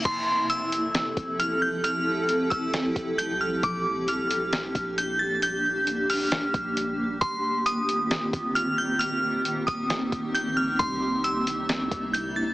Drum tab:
CC |x-------|--------|--------|--------|
HH |x-xxxxx-|x-xxxxx-|x-xxxxx-|x-xoxxx-|
SD |----o---|----o---|----o---|----o---|
BD |o----o--|---o-o--|o----o--|-----o--|

CC |--------|--------|--------|
HH |x-xxxxx-|x-xxxxx-|x-xxxxx-|
SD |----o---|----o---|----o---|
BD |o----o--|---o-o--|o----o--|